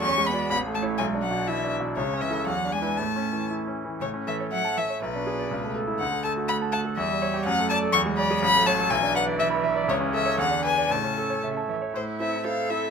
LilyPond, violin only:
\new Staff \with { instrumentName = "Violin" } { \time 2/4 \key a \major \tempo 4 = 122 cis'''8 b''8 b''8 a''8 | gis''8 fis''8 e''8 r8 | cis''8 e''8 fis''8 gis''8 | a''4 r4 |
cis''8 e''8 fis''8 e''8 | b'4. r8 | fis''8 a''8 b''8 a''8 | e''4 fis''8 a''8 |
cis'''8 b''8 b''8 a''8 | gis''8 fis''8 e''8 r8 | cis''8 e''8 fis''8 gis''8 | a''4 r4 |
\key a \minor c''8 e''8 f''8 e''8 | }